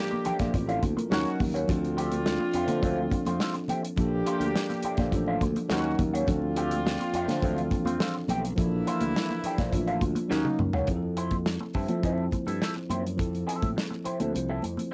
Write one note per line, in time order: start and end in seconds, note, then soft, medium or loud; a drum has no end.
0.00 0.16 F3 medium
0.00 0.16 A#3 medium
0.00 0.79 A#3 medium
0.00 0.20 D4 medium
0.00 0.79 D4 medium
0.00 0.80 G4 medium
0.00 0.17 A4 medium
0.11 muted clean electric guitar stroke soft
0.11 muted conga soft
0.11 high conga medium
0.25 0.38 F3 medium
0.25 0.38 A3 medium
0.25 0.38 D4 medium
0.25 0.38 G4 medium
0.25 muted fingered electric bass stroke soft
0.25 closed hi-hat medium
0.25 low conga medium
0.39 0.52 A#1 medium
0.39 0.53 F3 soft
0.39 0.53 A3 soft
0.39 0.52 D4 medium
0.39 0.52 F4 soft
0.39 kick medium
0.39 snare soft
0.39 closed hi-hat medium
0.39 high conga medium
0.54 0.78 A1 medium
0.54 0.68 C4 medium
0.54 0.68 F4 medium
0.54 muted clean electric guitar stroke soft
0.54 kick medium
0.54 closed hi-hat medium
0.67 0.82 F3 medium
0.67 0.82 A3 medium
0.67 0.82 D4 medium
0.67 0.96 E4 medium
0.67 0.82 F4 medium
0.67 0.95 A4 medium
0.67 closed hi-hat soft
0.67 muted conga soft
0.83 0.95 D2 medium
0.83 muted clean electric guitar stroke soft
0.83 kick medium
0.83 closed hi-hat medium
0.83 high conga medium
0.97 1.25 F4 medium
0.97 1.11 A#4 medium
0.97 muted clean electric guitar stroke soft
0.97 closed hi-hat medium
0.97 high conga medium
1.10 1.23 D#2 medium
1.10 1.56 F#3 medium
1.10 1.28 F#3 medium
1.10 1.28 A#3 medium
1.10 1.57 C#4 medium
1.10 1.39 C#4 medium
1.10 1.28 C#4 medium
1.10 1.39 D#4 medium
1.10 1.57 D#4 medium
1.10 1.39 F#4 medium
1.10 1.29 F#4 medium
1.10 1.58 A#4 loud
1.10 snare loud
1.25 closed hi-hat soft
1.25 muted conga soft
1.40 1.64 D#2 medium
1.40 muted clean electric guitar stroke soft
1.40 kick medium
1.40 open hi-hat medium
1.40 high conga medium
1.40 low conga medium
1.54 1.68 F#3 soft
1.54 1.67 A#3 medium
1.54 1.67 C#4 medium
1.54 1.67 F#4 medium
1.54 closed hi-hat medium
1.67 2.37 D2 loud
1.67 2.45 F3 medium
1.67 2.45 C4 medium
1.67 3.65 C4 medium
1.67 2.46 D4 medium
1.67 3.65 D4 medium
1.67 3.65 F4 medium
1.67 2.46 A4 medium
1.67 kick loud
1.67 closed hi-hat medium
1.67 low conga medium
1.84 closed hi-hat soft
1.97 2.14 F3 medium
1.97 2.14 A3 medium
1.97 2.14 C4 medium
1.97 2.14 G4 medium
1.97 closed hi-hat medium
2.11 closed hi-hat medium
2.11 high conga medium
2.26 muted clean electric guitar stroke soft
2.26 snare loud
2.26 muted conga soft
2.40 muted clean electric guitar stroke soft
2.40 muted conga soft
2.40 high conga soft
2.53 2.66 F2 medium
2.53 2.68 F3 medium
2.53 2.68 A3 medium
2.53 2.68 C4 medium
2.53 2.68 F4 medium
2.53 closed hi-hat medium
2.67 2.80 D3 medium
2.67 2.81 F3 medium
2.67 2.81 A3 medium
2.67 2.82 C4 medium
2.67 2.82 F4 medium
2.67 closed hi-hat medium
2.67 high conga medium
2.81 3.07 D2 loud
2.81 3.59 F3 medium
2.81 2.99 F3 medium
2.81 2.99 A3 medium
2.81 3.60 C4 medium
2.81 3.00 C4 medium
2.81 3.61 D4 medium
2.81 3.00 F4 medium
2.81 3.61 A4 medium
2.81 kick medium
2.81 closed hi-hat medium
2.81 muted conga soft
2.96 muted conga soft
3.10 muted clean electric guitar stroke soft
3.10 kick medium
3.10 closed hi-hat medium
3.10 high conga medium
3.25 3.38 F2 medium
3.25 3.39 F3 soft
3.25 3.39 A3 soft
3.25 3.40 C4 medium
3.25 3.39 F4 medium
3.25 closed hi-hat medium
3.25 high conga medium
3.40 3.57 F3 medium
3.40 3.54 A3 medium
3.40 3.54 C4 medium
3.40 3.53 F4 medium
3.40 snare loud
3.40 muted conga soft
3.54 muted clean electric guitar stroke soft
3.54 closed hi-hat soft
3.54 muted conga soft
3.68 3.82 F3 medium
3.68 3.82 A3 medium
3.68 3.82 C4 medium
3.68 3.83 G4 medium
3.68 closed hi-hat medium
3.68 high conga medium
3.68 low conga medium
3.83 muted clean electric guitar stroke soft
3.83 closed hi-hat medium
3.96 4.22 A#1 loud
3.96 4.75 F3 medium
3.96 5.38 A#3 medium
3.96 4.75 A#3 medium
3.96 5.38 D4 medium
3.96 4.76 D4 medium
3.96 5.38 G4 medium
3.96 kick loud
3.96 closed hi-hat medium
3.96 low conga medium
4.01 4.77 A4 medium
4.26 4.43 F3 medium
4.26 4.43 A3 medium
4.26 4.44 D4 medium
4.26 4.44 F4 medium
4.26 closed hi-hat medium
4.40 4.53 D2 medium
4.40 closed hi-hat medium
4.40 high conga medium
4.55 muted clean electric guitar stroke soft
4.55 snare loud
4.55 muted conga soft
4.70 muted clean electric guitar stroke soft
4.70 closed hi-hat soft
4.70 muted conga soft
4.70 high conga soft
4.83 4.97 F3 medium
4.83 4.97 A3 medium
4.83 4.98 D4 medium
4.83 4.98 G4 medium
4.83 muted fingered electric bass stroke soft
4.83 closed hi-hat medium
4.97 5.12 A#1 medium
4.97 5.12 F3 soft
4.97 5.12 A3 soft
4.97 5.12 D4 medium
4.97 5.12 F4 medium
4.97 kick loud
4.97 snare soft
4.97 closed hi-hat medium
4.97 high conga medium
5.12 5.36 A1 loud
5.12 5.70 F3 medium
5.12 5.70 A#3 medium
5.12 5.71 D4 medium
5.12 5.71 A4 medium
5.12 muted clean electric guitar stroke soft
5.12 kick loud
5.12 closed hi-hat medium
5.12 muted conga soft
5.26 5.41 F3 medium
5.26 5.41 A3 medium
5.26 5.42 D4 medium
5.26 5.42 F4 medium
5.26 muted conga soft
5.41 5.54 D2 medium
5.41 muted clean electric guitar stroke soft
5.41 kick medium
5.41 closed hi-hat medium
5.41 high conga medium
5.55 muted clean electric guitar stroke soft
5.55 closed hi-hat medium
5.55 high conga medium
5.68 5.94 D#2 loud
5.68 6.15 F#3 loud
5.68 5.91 F#3 medium
5.68 5.91 A#3 medium
5.68 6.16 C#4 medium
5.68 5.98 C#4 medium
5.68 5.91 C#4 medium
5.68 5.98 D#4 medium
5.68 6.17 D#4 medium
5.68 5.98 F#4 medium
5.68 5.91 F#4 medium
5.68 6.17 A#4 loud
5.68 snare loud
5.68 muted conga soft
5.84 muted conga soft
5.99 6.23 D#2 medium
5.99 muted clean electric guitar stroke soft
5.99 kick loud
5.99 closed hi-hat medium
5.99 high conga medium
5.99 low conga medium
6.13 6.27 F#3 soft
6.13 6.27 A#3 soft
6.13 6.27 C#4 medium
6.13 6.26 F#4 medium
6.13 closed hi-hat medium
6.26 6.96 D2 loud
6.26 7.04 F3 medium
6.26 7.05 C4 medium
6.26 8.25 C4 medium
6.26 8.25 D4 medium
6.26 7.05 D4 medium
6.26 8.25 F4 medium
6.26 7.06 A4 medium
6.26 kick loud
6.26 closed hi-hat medium
6.26 low conga medium
6.42 muted conga soft
6.57 6.73 F3 medium
6.57 6.73 A3 medium
6.57 6.74 C4 medium
6.57 6.74 G4 medium
6.57 closed hi-hat medium
6.71 closed hi-hat medium
6.71 high conga medium
6.86 muted clean electric guitar stroke soft
6.86 snare loud
6.86 muted conga soft
7.00 muted clean electric guitar stroke soft
7.00 closed hi-hat soft
7.00 high conga soft
7.14 7.26 F2 medium
7.14 7.27 F3 medium
7.14 7.27 A3 medium
7.14 7.28 C4 medium
7.14 7.28 F4 medium
7.14 closed hi-hat medium
7.28 7.40 D3 loud
7.28 7.42 F3 soft
7.28 7.42 A3 medium
7.28 7.42 C4 medium
7.28 7.42 F4 medium
7.28 snare soft
7.28 closed hi-hat medium
7.28 high conga medium
7.41 7.67 D2 loud
7.41 7.48 E3 medium
7.41 7.59 F3 medium
7.41 7.60 A3 medium
7.41 8.19 C4 medium
7.41 7.60 C4 medium
7.41 8.20 D4 medium
7.41 7.60 F4 medium
7.41 8.21 A4 medium
7.41 kick loud
7.41 closed hi-hat medium
7.41 muted conga soft
7.47 8.22 F3 medium
7.56 closed hi-hat soft
7.56 muted conga soft
7.71 muted clean electric guitar stroke soft
7.71 kick medium
7.71 closed hi-hat medium
7.71 high conga medium
7.85 7.97 F2 medium
7.85 7.99 F3 medium
7.85 7.99 A3 medium
7.85 7.99 C4 medium
7.85 7.99 F4 medium
7.85 closed hi-hat medium
7.85 high conga medium
8.00 8.17 F3 medium
8.00 8.15 A3 medium
8.00 8.15 C4 medium
8.00 8.14 F4 medium
8.00 snare loud
8.00 muted conga soft
8.15 muted clean electric guitar stroke soft
8.28 8.53 B1 loud
8.28 8.42 F3 medium
8.28 8.42 A3 medium
8.28 8.42 C4 medium
8.28 8.43 G4 medium
8.28 closed hi-hat medium
8.28 high conga medium
8.28 low conga medium
8.44 muted clean electric guitar stroke soft
8.44 closed hi-hat medium
8.55 8.82 A#1 loud
8.55 9.98 E3 medium
8.55 9.34 F3 medium
8.55 9.34 A#3 medium
8.55 9.98 A#3 medium
8.55 9.35 D4 medium
8.55 9.98 E4 medium
8.55 9.36 A4 medium
8.55 kick loud
8.55 closed hi-hat medium
8.55 low conga medium
8.72 muted conga soft
8.87 9.03 F3 medium
8.87 9.03 A3 medium
8.87 9.03 D4 medium
8.87 9.04 F4 medium
8.87 closed hi-hat medium
9.00 9.13 D2 medium
9.00 closed hi-hat medium
9.00 high conga medium
9.16 muted clean electric guitar stroke soft
9.16 snare loud
9.16 muted conga soft
9.30 muted clean electric guitar stroke soft
9.30 high conga soft
9.44 9.58 F3 medium
9.44 9.58 A3 medium
9.44 9.58 D4 medium
9.44 9.58 G4 medium
9.44 muted fingered electric bass stroke soft
9.44 closed hi-hat medium
9.58 9.73 A#1 medium
9.58 9.72 F3 soft
9.58 9.72 A3 soft
9.58 9.72 D4 medium
9.58 9.72 F4 medium
9.58 kick medium
9.58 snare soft
9.58 closed hi-hat medium
9.58 high conga medium
9.72 9.97 A1 medium
9.72 10.30 F3 medium
9.72 10.30 A#3 medium
9.72 10.31 D4 medium
9.72 10.32 F4 medium
9.72 muted clean electric guitar stroke soft
9.72 kick loud
9.72 closed hi-hat medium
9.72 muted conga soft
9.87 10.01 F3 medium
9.87 10.01 A3 medium
9.87 10.01 D4 medium
9.87 10.02 F4 medium
9.87 closed hi-hat soft
9.87 muted conga soft
10.01 10.14 D2 medium
10.01 muted clean electric guitar stroke soft
10.01 kick medium
10.01 closed hi-hat medium
10.01 high conga medium
10.15 muted clean electric guitar stroke soft
10.15 closed hi-hat medium
10.15 high conga medium
10.28 10.43 D#2 loud
10.28 10.75 F#3 medium
10.28 10.47 F#3 medium
10.28 10.59 F#3 medium
10.28 10.58 A#3 medium
10.28 10.47 A#3 medium
10.28 10.76 C#4 medium
10.28 10.47 C#4 medium
10.28 10.59 D#4 medium
10.28 10.77 D#4 medium
10.28 10.47 F#4 medium
10.28 10.77 A#4 loud
10.28 snare medium
10.44 high tom medium
10.44 muted conga soft
10.59 10.72 C#2 medium
10.59 muted clean electric guitar stroke soft
10.59 mid tom medium
10.59 high conga medium
10.59 low conga medium
10.73 10.86 C#2 medium
10.73 10.87 F#3 soft
10.73 10.87 A#3 medium
10.73 10.87 C#4 soft
10.73 10.87 F#4 medium
10.73 floor tom medium
10.87 11.57 F2 medium
10.87 11.65 F3 medium
10.87 11.66 C4 medium
10.87 11.66 E4 medium
10.87 10.96 G#4 medium
10.87 kick loud
10.87 closed hi-hat medium
10.87 muted conga soft
10.87 low conga medium
10.97 11.70 A4 medium
11.02 muted conga soft
11.17 11.34 F3 medium
11.17 11.34 C4 medium
11.17 11.34 E4 medium
11.17 11.34 C5 medium
11.17 closed hi-hat medium
11.31 kick medium
11.31 closed hi-hat soft
11.31 high conga medium
11.46 muted clean electric guitar stroke soft
11.46 snare loud
11.46 muted conga soft
11.60 muted clean electric guitar stroke soft
11.60 muted conga soft
11.60 high conga soft
11.73 11.87 G2 medium
11.73 11.88 F3 soft
11.73 11.88 C4 medium
11.73 11.88 E4 medium
11.73 11.87 A4 medium
11.73 kick medium
11.73 open hi-hat soft
11.88 12.01 F3 medium
11.88 12.02 F3 soft
11.88 12.02 C4 soft
11.88 12.02 E4 soft
11.88 12.02 A4 medium
11.88 closed hi-hat medium
11.88 high conga medium
12.02 12.28 F2 medium
12.02 12.80 F3 medium
12.02 12.24 F3 medium
12.02 12.81 C4 medium
12.02 12.24 C4 medium
12.02 12.81 E4 medium
12.02 12.24 E4 medium
12.02 12.24 A4 medium
12.02 12.82 C5 medium
12.02 kick medium
12.02 closed hi-hat medium
12.18 muted conga soft
12.31 muted clean electric guitar stroke soft
12.31 kick medium
12.31 closed hi-hat medium
12.31 high conga medium
12.46 12.59 G2 medium
12.46 12.60 F3 soft
12.46 12.60 C4 soft
12.46 12.60 E4 soft
12.46 12.60 A4 soft
12.46 closed hi-hat medium
12.46 high conga medium
12.61 12.78 F3 medium
12.61 12.76 C4 medium
12.61 12.75 E4 medium
12.61 12.74 A4 medium
12.61 snare medium
12.76 muted clean electric guitar stroke soft
12.76 muted conga soft
12.89 13.19 F#2 medium
12.89 13.03 F3 medium
12.89 13.03 C4 medium
12.89 13.03 E4 medium
12.89 13.03 C5 medium
12.89 closed hi-hat medium
12.89 high conga medium
12.89 low conga medium
13.04 muted clean electric guitar stroke soft
13.04 closed hi-hat soft
13.17 13.43 F2 loud
13.17 13.96 F3 medium
13.17 13.96 C4 medium
13.17 13.97 E4 medium
13.17 13.97 A4 medium
13.17 kick loud
13.17 closed hi-hat medium
13.17 low conga medium
13.33 closed hi-hat soft
13.33 muted conga soft
13.47 13.67 F3 medium
13.47 13.68 C4 medium
13.47 13.68 E4 medium
13.47 13.68 A4 medium
13.47 closed hi-hat medium
13.62 13.75 A2 medium
13.62 kick medium
13.62 closed hi-hat soft
13.62 high conga medium
13.76 muted clean electric guitar stroke soft
13.76 snare loud
13.90 muted clean electric guitar stroke soft
13.90 muted conga soft
13.90 high conga soft
14.04 14.18 F3 soft
14.04 14.18 C4 medium
14.04 14.19 E4 soft
14.04 14.19 C5 medium
14.04 muted fingered electric bass stroke soft
14.04 closed hi-hat medium
14.20 14.36 D2 medium
14.20 14.33 F3 soft
14.20 14.33 C4 medium
14.20 14.33 E4 medium
14.20 14.33 A4 medium
14.20 closed hi-hat medium
14.20 high conga medium
14.33 14.59 C2 loud
14.33 14.94 F3 medium
14.33 14.94 C4 medium
14.33 14.94 E4 medium
14.33 14.64 C5 medium
14.33 muted clean electric guitar stroke soft
14.33 closed hi-hat medium
14.49 14.62 F3 medium
14.49 14.62 C4 medium
14.49 14.63 E4 medium
14.49 14.63 A4 medium
14.49 muted conga soft
14.62 14.76 F2 medium
14.62 muted clean electric guitar stroke soft
14.62 closed hi-hat medium
14.62 high conga medium
14.77 muted clean electric guitar stroke soft
14.77 closed hi-hat soft
14.77 high conga medium